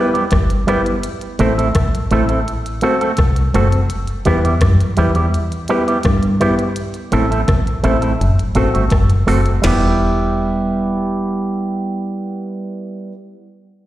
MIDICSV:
0, 0, Header, 1, 5, 480
1, 0, Start_track
1, 0, Key_signature, 1, "minor"
1, 0, Tempo, 715990
1, 694, Time_signature, 4, 2, 24, 8
1, 9296, End_track
2, 0, Start_track
2, 0, Title_t, "Upright piano"
2, 0, Program_c, 0, 0
2, 0, Note_on_c, 0, 59, 100
2, 0, Note_on_c, 0, 64, 85
2, 0, Note_on_c, 0, 67, 85
2, 0, Note_on_c, 0, 71, 109
2, 118, Note_off_c, 0, 59, 0
2, 119, Note_off_c, 0, 64, 0
2, 121, Note_off_c, 0, 67, 0
2, 122, Note_off_c, 0, 71, 0
2, 452, Note_on_c, 0, 59, 90
2, 456, Note_on_c, 0, 64, 84
2, 458, Note_on_c, 0, 67, 71
2, 461, Note_on_c, 0, 71, 102
2, 598, Note_off_c, 0, 59, 0
2, 600, Note_off_c, 0, 64, 0
2, 601, Note_off_c, 0, 67, 0
2, 603, Note_off_c, 0, 71, 0
2, 934, Note_on_c, 0, 60, 81
2, 938, Note_on_c, 0, 64, 77
2, 940, Note_on_c, 0, 69, 82
2, 943, Note_on_c, 0, 72, 102
2, 1079, Note_off_c, 0, 60, 0
2, 1081, Note_off_c, 0, 64, 0
2, 1082, Note_off_c, 0, 69, 0
2, 1084, Note_off_c, 0, 72, 0
2, 1413, Note_on_c, 0, 60, 76
2, 1417, Note_on_c, 0, 64, 83
2, 1420, Note_on_c, 0, 69, 73
2, 1422, Note_on_c, 0, 72, 99
2, 1532, Note_off_c, 0, 69, 0
2, 1532, Note_off_c, 0, 72, 0
2, 1542, Note_on_c, 0, 69, 25
2, 1542, Note_on_c, 0, 72, 25
2, 1559, Note_off_c, 0, 60, 0
2, 1561, Note_off_c, 0, 64, 0
2, 1587, Note_off_c, 0, 69, 0
2, 1587, Note_off_c, 0, 72, 0
2, 1894, Note_on_c, 0, 60, 88
2, 1897, Note_on_c, 0, 66, 86
2, 1900, Note_on_c, 0, 69, 79
2, 1902, Note_on_c, 0, 72, 103
2, 2040, Note_off_c, 0, 60, 0
2, 2041, Note_off_c, 0, 66, 0
2, 2043, Note_off_c, 0, 69, 0
2, 2044, Note_off_c, 0, 72, 0
2, 2373, Note_on_c, 0, 60, 90
2, 2375, Note_on_c, 0, 66, 72
2, 2379, Note_on_c, 0, 69, 80
2, 2380, Note_on_c, 0, 72, 95
2, 2520, Note_off_c, 0, 60, 0
2, 2521, Note_off_c, 0, 66, 0
2, 2522, Note_off_c, 0, 69, 0
2, 2523, Note_off_c, 0, 72, 0
2, 2853, Note_on_c, 0, 59, 91
2, 2856, Note_on_c, 0, 64, 87
2, 2859, Note_on_c, 0, 67, 81
2, 2862, Note_on_c, 0, 71, 100
2, 3000, Note_off_c, 0, 59, 0
2, 3001, Note_off_c, 0, 64, 0
2, 3003, Note_off_c, 0, 67, 0
2, 3004, Note_off_c, 0, 71, 0
2, 3335, Note_on_c, 0, 59, 80
2, 3338, Note_on_c, 0, 64, 79
2, 3340, Note_on_c, 0, 67, 77
2, 3343, Note_on_c, 0, 71, 99
2, 3453, Note_off_c, 0, 71, 0
2, 3454, Note_off_c, 0, 67, 0
2, 3463, Note_on_c, 0, 71, 27
2, 3464, Note_on_c, 0, 67, 26
2, 3481, Note_off_c, 0, 59, 0
2, 3482, Note_off_c, 0, 64, 0
2, 3508, Note_off_c, 0, 67, 0
2, 3508, Note_off_c, 0, 71, 0
2, 3815, Note_on_c, 0, 59, 89
2, 3818, Note_on_c, 0, 64, 84
2, 3820, Note_on_c, 0, 67, 84
2, 3823, Note_on_c, 0, 71, 101
2, 3961, Note_off_c, 0, 59, 0
2, 3963, Note_off_c, 0, 64, 0
2, 3963, Note_off_c, 0, 67, 0
2, 3965, Note_off_c, 0, 71, 0
2, 4294, Note_on_c, 0, 59, 94
2, 4297, Note_on_c, 0, 64, 77
2, 4300, Note_on_c, 0, 67, 83
2, 4302, Note_on_c, 0, 71, 88
2, 4441, Note_off_c, 0, 59, 0
2, 4442, Note_off_c, 0, 64, 0
2, 4444, Note_off_c, 0, 67, 0
2, 4445, Note_off_c, 0, 71, 0
2, 4775, Note_on_c, 0, 60, 89
2, 4778, Note_on_c, 0, 64, 76
2, 4781, Note_on_c, 0, 69, 82
2, 4784, Note_on_c, 0, 72, 94
2, 4921, Note_off_c, 0, 60, 0
2, 4923, Note_off_c, 0, 64, 0
2, 4924, Note_off_c, 0, 69, 0
2, 4926, Note_off_c, 0, 72, 0
2, 5256, Note_on_c, 0, 60, 88
2, 5258, Note_on_c, 0, 64, 79
2, 5262, Note_on_c, 0, 69, 72
2, 5264, Note_on_c, 0, 72, 98
2, 5374, Note_off_c, 0, 72, 0
2, 5375, Note_off_c, 0, 69, 0
2, 5384, Note_on_c, 0, 72, 25
2, 5385, Note_on_c, 0, 69, 24
2, 5401, Note_off_c, 0, 60, 0
2, 5403, Note_off_c, 0, 64, 0
2, 5429, Note_off_c, 0, 69, 0
2, 5429, Note_off_c, 0, 72, 0
2, 5737, Note_on_c, 0, 60, 83
2, 5741, Note_on_c, 0, 66, 82
2, 5742, Note_on_c, 0, 69, 81
2, 5745, Note_on_c, 0, 72, 95
2, 5882, Note_off_c, 0, 60, 0
2, 5884, Note_off_c, 0, 66, 0
2, 5885, Note_off_c, 0, 69, 0
2, 5886, Note_off_c, 0, 72, 0
2, 6216, Note_on_c, 0, 60, 82
2, 6218, Note_on_c, 0, 66, 66
2, 6222, Note_on_c, 0, 69, 80
2, 6224, Note_on_c, 0, 72, 92
2, 6361, Note_off_c, 0, 60, 0
2, 6362, Note_off_c, 0, 66, 0
2, 6364, Note_off_c, 0, 69, 0
2, 6366, Note_off_c, 0, 72, 0
2, 6456, Note_on_c, 0, 59, 73
2, 6458, Note_on_c, 0, 64, 74
2, 6460, Note_on_c, 0, 67, 67
2, 6462, Note_on_c, 0, 71, 86
2, 8773, Note_off_c, 0, 59, 0
2, 8775, Note_off_c, 0, 64, 0
2, 8778, Note_off_c, 0, 67, 0
2, 8780, Note_off_c, 0, 71, 0
2, 9296, End_track
3, 0, Start_track
3, 0, Title_t, "Clean electric guitar"
3, 0, Program_c, 1, 27
3, 93, Note_on_c, 1, 67, 63
3, 99, Note_on_c, 1, 64, 59
3, 102, Note_on_c, 1, 59, 58
3, 103, Note_on_c, 1, 55, 55
3, 157, Note_off_c, 1, 67, 0
3, 160, Note_off_c, 1, 64, 0
3, 161, Note_off_c, 1, 59, 0
3, 162, Note_off_c, 1, 55, 0
3, 451, Note_on_c, 1, 55, 92
3, 454, Note_on_c, 1, 59, 99
3, 458, Note_on_c, 1, 64, 92
3, 462, Note_on_c, 1, 67, 101
3, 537, Note_off_c, 1, 55, 0
3, 539, Note_off_c, 1, 59, 0
3, 540, Note_off_c, 1, 64, 0
3, 542, Note_off_c, 1, 67, 0
3, 933, Note_on_c, 1, 57, 88
3, 937, Note_on_c, 1, 60, 98
3, 939, Note_on_c, 1, 64, 98
3, 942, Note_on_c, 1, 69, 97
3, 1018, Note_off_c, 1, 57, 0
3, 1020, Note_off_c, 1, 60, 0
3, 1021, Note_off_c, 1, 64, 0
3, 1022, Note_off_c, 1, 69, 0
3, 1059, Note_on_c, 1, 69, 72
3, 1063, Note_on_c, 1, 64, 70
3, 1066, Note_on_c, 1, 60, 50
3, 1070, Note_on_c, 1, 57, 53
3, 1120, Note_off_c, 1, 69, 0
3, 1123, Note_off_c, 1, 64, 0
3, 1124, Note_off_c, 1, 60, 0
3, 1126, Note_off_c, 1, 57, 0
3, 1417, Note_on_c, 1, 57, 96
3, 1421, Note_on_c, 1, 60, 86
3, 1423, Note_on_c, 1, 64, 85
3, 1425, Note_on_c, 1, 69, 95
3, 1500, Note_off_c, 1, 57, 0
3, 1502, Note_off_c, 1, 60, 0
3, 1504, Note_off_c, 1, 64, 0
3, 1505, Note_off_c, 1, 69, 0
3, 1537, Note_on_c, 1, 69, 63
3, 1540, Note_on_c, 1, 64, 53
3, 1545, Note_on_c, 1, 60, 58
3, 1546, Note_on_c, 1, 57, 48
3, 1600, Note_off_c, 1, 69, 0
3, 1601, Note_off_c, 1, 64, 0
3, 1604, Note_off_c, 1, 57, 0
3, 1604, Note_off_c, 1, 60, 0
3, 1892, Note_on_c, 1, 57, 76
3, 1895, Note_on_c, 1, 60, 81
3, 1899, Note_on_c, 1, 66, 93
3, 1900, Note_on_c, 1, 69, 101
3, 1978, Note_off_c, 1, 57, 0
3, 1980, Note_off_c, 1, 60, 0
3, 1982, Note_off_c, 1, 66, 0
3, 1982, Note_off_c, 1, 69, 0
3, 2020, Note_on_c, 1, 69, 83
3, 2023, Note_on_c, 1, 66, 66
3, 2027, Note_on_c, 1, 60, 65
3, 2030, Note_on_c, 1, 57, 57
3, 2082, Note_off_c, 1, 69, 0
3, 2083, Note_off_c, 1, 66, 0
3, 2085, Note_off_c, 1, 60, 0
3, 2086, Note_off_c, 1, 57, 0
3, 2375, Note_on_c, 1, 57, 76
3, 2378, Note_on_c, 1, 60, 81
3, 2381, Note_on_c, 1, 66, 86
3, 2385, Note_on_c, 1, 69, 91
3, 2460, Note_off_c, 1, 57, 0
3, 2461, Note_off_c, 1, 60, 0
3, 2463, Note_off_c, 1, 66, 0
3, 2465, Note_off_c, 1, 69, 0
3, 2853, Note_on_c, 1, 55, 86
3, 2859, Note_on_c, 1, 59, 98
3, 2862, Note_on_c, 1, 64, 93
3, 2863, Note_on_c, 1, 67, 91
3, 2939, Note_off_c, 1, 55, 0
3, 2942, Note_off_c, 1, 59, 0
3, 2943, Note_off_c, 1, 64, 0
3, 2944, Note_off_c, 1, 67, 0
3, 2980, Note_on_c, 1, 67, 63
3, 2983, Note_on_c, 1, 64, 50
3, 2988, Note_on_c, 1, 59, 60
3, 2989, Note_on_c, 1, 55, 47
3, 3042, Note_off_c, 1, 67, 0
3, 3043, Note_off_c, 1, 64, 0
3, 3045, Note_off_c, 1, 59, 0
3, 3046, Note_off_c, 1, 55, 0
3, 3334, Note_on_c, 1, 55, 85
3, 3337, Note_on_c, 1, 59, 75
3, 3340, Note_on_c, 1, 64, 90
3, 3342, Note_on_c, 1, 67, 89
3, 3420, Note_off_c, 1, 55, 0
3, 3421, Note_off_c, 1, 59, 0
3, 3423, Note_off_c, 1, 64, 0
3, 3423, Note_off_c, 1, 67, 0
3, 3458, Note_on_c, 1, 67, 61
3, 3461, Note_on_c, 1, 64, 55
3, 3464, Note_on_c, 1, 59, 56
3, 3466, Note_on_c, 1, 55, 46
3, 3521, Note_off_c, 1, 67, 0
3, 3522, Note_off_c, 1, 64, 0
3, 3524, Note_off_c, 1, 59, 0
3, 3525, Note_off_c, 1, 55, 0
3, 3817, Note_on_c, 1, 55, 77
3, 3819, Note_on_c, 1, 59, 89
3, 3821, Note_on_c, 1, 64, 92
3, 3824, Note_on_c, 1, 67, 98
3, 3901, Note_off_c, 1, 55, 0
3, 3902, Note_off_c, 1, 59, 0
3, 3903, Note_off_c, 1, 64, 0
3, 3905, Note_off_c, 1, 67, 0
3, 3941, Note_on_c, 1, 67, 73
3, 3943, Note_on_c, 1, 64, 64
3, 3946, Note_on_c, 1, 59, 52
3, 3948, Note_on_c, 1, 55, 59
3, 4002, Note_off_c, 1, 67, 0
3, 4004, Note_off_c, 1, 64, 0
3, 4005, Note_off_c, 1, 59, 0
3, 4006, Note_off_c, 1, 55, 0
3, 4294, Note_on_c, 1, 55, 79
3, 4298, Note_on_c, 1, 59, 87
3, 4299, Note_on_c, 1, 64, 80
3, 4303, Note_on_c, 1, 67, 89
3, 4380, Note_off_c, 1, 55, 0
3, 4382, Note_off_c, 1, 59, 0
3, 4382, Note_off_c, 1, 64, 0
3, 4384, Note_off_c, 1, 67, 0
3, 4773, Note_on_c, 1, 57, 76
3, 4777, Note_on_c, 1, 60, 78
3, 4777, Note_on_c, 1, 64, 90
3, 4780, Note_on_c, 1, 69, 90
3, 4859, Note_off_c, 1, 57, 0
3, 4861, Note_off_c, 1, 60, 0
3, 4861, Note_off_c, 1, 64, 0
3, 4863, Note_off_c, 1, 69, 0
3, 4899, Note_on_c, 1, 69, 64
3, 4903, Note_on_c, 1, 64, 62
3, 4906, Note_on_c, 1, 60, 63
3, 4908, Note_on_c, 1, 57, 53
3, 4961, Note_off_c, 1, 69, 0
3, 4963, Note_off_c, 1, 64, 0
3, 4965, Note_off_c, 1, 60, 0
3, 4966, Note_off_c, 1, 57, 0
3, 5252, Note_on_c, 1, 57, 82
3, 5254, Note_on_c, 1, 60, 82
3, 5257, Note_on_c, 1, 64, 73
3, 5261, Note_on_c, 1, 69, 83
3, 5339, Note_off_c, 1, 57, 0
3, 5340, Note_off_c, 1, 60, 0
3, 5341, Note_off_c, 1, 64, 0
3, 5343, Note_off_c, 1, 69, 0
3, 5376, Note_on_c, 1, 69, 65
3, 5380, Note_on_c, 1, 64, 62
3, 5382, Note_on_c, 1, 60, 57
3, 5385, Note_on_c, 1, 57, 55
3, 5440, Note_off_c, 1, 69, 0
3, 5442, Note_off_c, 1, 64, 0
3, 5443, Note_off_c, 1, 60, 0
3, 5444, Note_off_c, 1, 57, 0
3, 5734, Note_on_c, 1, 57, 84
3, 5735, Note_on_c, 1, 60, 82
3, 5739, Note_on_c, 1, 66, 78
3, 5743, Note_on_c, 1, 69, 101
3, 5820, Note_off_c, 1, 57, 0
3, 5820, Note_off_c, 1, 60, 0
3, 5822, Note_off_c, 1, 66, 0
3, 5824, Note_off_c, 1, 69, 0
3, 5857, Note_on_c, 1, 69, 71
3, 5863, Note_on_c, 1, 66, 72
3, 5865, Note_on_c, 1, 60, 61
3, 5868, Note_on_c, 1, 57, 59
3, 5920, Note_off_c, 1, 69, 0
3, 5923, Note_off_c, 1, 66, 0
3, 5924, Note_off_c, 1, 60, 0
3, 5926, Note_off_c, 1, 57, 0
3, 6214, Note_on_c, 1, 57, 82
3, 6218, Note_on_c, 1, 60, 94
3, 6220, Note_on_c, 1, 66, 91
3, 6223, Note_on_c, 1, 69, 104
3, 6300, Note_off_c, 1, 57, 0
3, 6301, Note_off_c, 1, 60, 0
3, 6303, Note_off_c, 1, 66, 0
3, 6304, Note_off_c, 1, 69, 0
3, 6449, Note_on_c, 1, 55, 69
3, 6462, Note_on_c, 1, 59, 73
3, 6472, Note_on_c, 1, 64, 77
3, 6482, Note_on_c, 1, 67, 89
3, 8795, Note_off_c, 1, 55, 0
3, 8808, Note_off_c, 1, 59, 0
3, 8818, Note_off_c, 1, 64, 0
3, 8828, Note_off_c, 1, 67, 0
3, 9296, End_track
4, 0, Start_track
4, 0, Title_t, "Fingered electric bass"
4, 0, Program_c, 2, 33
4, 216, Note_on_c, 2, 31, 90
4, 424, Note_off_c, 2, 31, 0
4, 941, Note_on_c, 2, 33, 91
4, 1147, Note_off_c, 2, 33, 0
4, 1177, Note_on_c, 2, 35, 87
4, 1285, Note_off_c, 2, 35, 0
4, 1422, Note_on_c, 2, 33, 99
4, 1628, Note_off_c, 2, 33, 0
4, 2136, Note_on_c, 2, 36, 86
4, 2345, Note_off_c, 2, 36, 0
4, 2382, Note_on_c, 2, 30, 87
4, 2589, Note_off_c, 2, 30, 0
4, 2863, Note_on_c, 2, 40, 92
4, 3069, Note_off_c, 2, 40, 0
4, 3097, Note_on_c, 2, 42, 88
4, 3205, Note_off_c, 2, 42, 0
4, 3341, Note_on_c, 2, 40, 85
4, 3548, Note_off_c, 2, 40, 0
4, 4058, Note_on_c, 2, 43, 85
4, 4267, Note_off_c, 2, 43, 0
4, 4783, Note_on_c, 2, 33, 88
4, 4990, Note_off_c, 2, 33, 0
4, 5020, Note_on_c, 2, 35, 82
4, 5127, Note_off_c, 2, 35, 0
4, 5263, Note_on_c, 2, 33, 93
4, 5469, Note_off_c, 2, 33, 0
4, 5503, Note_on_c, 2, 30, 109
4, 5608, Note_off_c, 2, 30, 0
4, 5744, Note_on_c, 2, 33, 88
4, 5849, Note_off_c, 2, 33, 0
4, 5870, Note_on_c, 2, 31, 88
4, 5966, Note_off_c, 2, 31, 0
4, 5979, Note_on_c, 2, 30, 94
4, 6187, Note_off_c, 2, 30, 0
4, 6224, Note_on_c, 2, 30, 87
4, 6430, Note_off_c, 2, 30, 0
4, 6465, Note_on_c, 2, 28, 91
4, 8783, Note_off_c, 2, 28, 0
4, 9296, End_track
5, 0, Start_track
5, 0, Title_t, "Drums"
5, 101, Note_on_c, 9, 42, 44
5, 168, Note_off_c, 9, 42, 0
5, 206, Note_on_c, 9, 42, 82
5, 214, Note_on_c, 9, 36, 116
5, 218, Note_on_c, 9, 37, 104
5, 273, Note_off_c, 9, 42, 0
5, 281, Note_off_c, 9, 36, 0
5, 285, Note_off_c, 9, 37, 0
5, 336, Note_on_c, 9, 42, 56
5, 403, Note_off_c, 9, 42, 0
5, 456, Note_on_c, 9, 37, 65
5, 456, Note_on_c, 9, 42, 73
5, 523, Note_off_c, 9, 37, 0
5, 523, Note_off_c, 9, 42, 0
5, 578, Note_on_c, 9, 42, 47
5, 645, Note_off_c, 9, 42, 0
5, 694, Note_on_c, 9, 42, 106
5, 761, Note_off_c, 9, 42, 0
5, 814, Note_on_c, 9, 42, 46
5, 881, Note_off_c, 9, 42, 0
5, 933, Note_on_c, 9, 42, 76
5, 1000, Note_off_c, 9, 42, 0
5, 1065, Note_on_c, 9, 42, 60
5, 1132, Note_off_c, 9, 42, 0
5, 1172, Note_on_c, 9, 42, 89
5, 1174, Note_on_c, 9, 36, 103
5, 1176, Note_on_c, 9, 37, 109
5, 1239, Note_off_c, 9, 42, 0
5, 1241, Note_off_c, 9, 36, 0
5, 1243, Note_off_c, 9, 37, 0
5, 1306, Note_on_c, 9, 42, 61
5, 1373, Note_off_c, 9, 42, 0
5, 1413, Note_on_c, 9, 42, 62
5, 1480, Note_off_c, 9, 42, 0
5, 1535, Note_on_c, 9, 42, 47
5, 1602, Note_off_c, 9, 42, 0
5, 1662, Note_on_c, 9, 42, 67
5, 1729, Note_off_c, 9, 42, 0
5, 1783, Note_on_c, 9, 42, 55
5, 1850, Note_off_c, 9, 42, 0
5, 1886, Note_on_c, 9, 42, 64
5, 1953, Note_off_c, 9, 42, 0
5, 2020, Note_on_c, 9, 42, 46
5, 2087, Note_off_c, 9, 42, 0
5, 2124, Note_on_c, 9, 42, 76
5, 2134, Note_on_c, 9, 36, 104
5, 2136, Note_on_c, 9, 37, 99
5, 2191, Note_off_c, 9, 42, 0
5, 2201, Note_off_c, 9, 36, 0
5, 2204, Note_off_c, 9, 37, 0
5, 2255, Note_on_c, 9, 42, 57
5, 2322, Note_off_c, 9, 42, 0
5, 2377, Note_on_c, 9, 37, 63
5, 2377, Note_on_c, 9, 42, 77
5, 2444, Note_off_c, 9, 37, 0
5, 2444, Note_off_c, 9, 42, 0
5, 2497, Note_on_c, 9, 42, 53
5, 2564, Note_off_c, 9, 42, 0
5, 2613, Note_on_c, 9, 42, 94
5, 2680, Note_off_c, 9, 42, 0
5, 2732, Note_on_c, 9, 42, 44
5, 2799, Note_off_c, 9, 42, 0
5, 2851, Note_on_c, 9, 42, 73
5, 2918, Note_off_c, 9, 42, 0
5, 2983, Note_on_c, 9, 42, 59
5, 3050, Note_off_c, 9, 42, 0
5, 3090, Note_on_c, 9, 42, 87
5, 3094, Note_on_c, 9, 36, 99
5, 3094, Note_on_c, 9, 37, 123
5, 3157, Note_off_c, 9, 42, 0
5, 3161, Note_off_c, 9, 36, 0
5, 3161, Note_off_c, 9, 37, 0
5, 3222, Note_on_c, 9, 42, 55
5, 3289, Note_off_c, 9, 42, 0
5, 3330, Note_on_c, 9, 42, 70
5, 3397, Note_off_c, 9, 42, 0
5, 3453, Note_on_c, 9, 42, 46
5, 3520, Note_off_c, 9, 42, 0
5, 3582, Note_on_c, 9, 42, 72
5, 3649, Note_off_c, 9, 42, 0
5, 3700, Note_on_c, 9, 42, 50
5, 3768, Note_off_c, 9, 42, 0
5, 3808, Note_on_c, 9, 42, 65
5, 3875, Note_off_c, 9, 42, 0
5, 3942, Note_on_c, 9, 42, 41
5, 4009, Note_off_c, 9, 42, 0
5, 4045, Note_on_c, 9, 42, 71
5, 4055, Note_on_c, 9, 36, 109
5, 4057, Note_on_c, 9, 37, 112
5, 4112, Note_off_c, 9, 42, 0
5, 4122, Note_off_c, 9, 36, 0
5, 4124, Note_off_c, 9, 37, 0
5, 4174, Note_on_c, 9, 42, 53
5, 4241, Note_off_c, 9, 42, 0
5, 4296, Note_on_c, 9, 42, 70
5, 4297, Note_on_c, 9, 37, 58
5, 4364, Note_off_c, 9, 37, 0
5, 4364, Note_off_c, 9, 42, 0
5, 4417, Note_on_c, 9, 42, 49
5, 4484, Note_off_c, 9, 42, 0
5, 4532, Note_on_c, 9, 42, 103
5, 4599, Note_off_c, 9, 42, 0
5, 4652, Note_on_c, 9, 42, 44
5, 4719, Note_off_c, 9, 42, 0
5, 4773, Note_on_c, 9, 42, 74
5, 4840, Note_off_c, 9, 42, 0
5, 4907, Note_on_c, 9, 42, 57
5, 4974, Note_off_c, 9, 42, 0
5, 5015, Note_on_c, 9, 36, 120
5, 5015, Note_on_c, 9, 42, 77
5, 5019, Note_on_c, 9, 37, 105
5, 5082, Note_off_c, 9, 42, 0
5, 5083, Note_off_c, 9, 36, 0
5, 5086, Note_off_c, 9, 37, 0
5, 5143, Note_on_c, 9, 42, 50
5, 5210, Note_off_c, 9, 42, 0
5, 5254, Note_on_c, 9, 42, 68
5, 5321, Note_off_c, 9, 42, 0
5, 5378, Note_on_c, 9, 42, 43
5, 5445, Note_off_c, 9, 42, 0
5, 5506, Note_on_c, 9, 42, 69
5, 5574, Note_off_c, 9, 42, 0
5, 5628, Note_on_c, 9, 42, 54
5, 5695, Note_off_c, 9, 42, 0
5, 5731, Note_on_c, 9, 42, 69
5, 5798, Note_off_c, 9, 42, 0
5, 5865, Note_on_c, 9, 42, 47
5, 5933, Note_off_c, 9, 42, 0
5, 5969, Note_on_c, 9, 42, 73
5, 5977, Note_on_c, 9, 36, 105
5, 5981, Note_on_c, 9, 37, 93
5, 6036, Note_off_c, 9, 42, 0
5, 6044, Note_off_c, 9, 36, 0
5, 6048, Note_off_c, 9, 37, 0
5, 6098, Note_on_c, 9, 42, 55
5, 6165, Note_off_c, 9, 42, 0
5, 6220, Note_on_c, 9, 46, 69
5, 6221, Note_on_c, 9, 37, 62
5, 6287, Note_off_c, 9, 46, 0
5, 6288, Note_off_c, 9, 37, 0
5, 6340, Note_on_c, 9, 42, 48
5, 6407, Note_off_c, 9, 42, 0
5, 6459, Note_on_c, 9, 49, 81
5, 6461, Note_on_c, 9, 38, 108
5, 6526, Note_off_c, 9, 49, 0
5, 6528, Note_off_c, 9, 38, 0
5, 9296, End_track
0, 0, End_of_file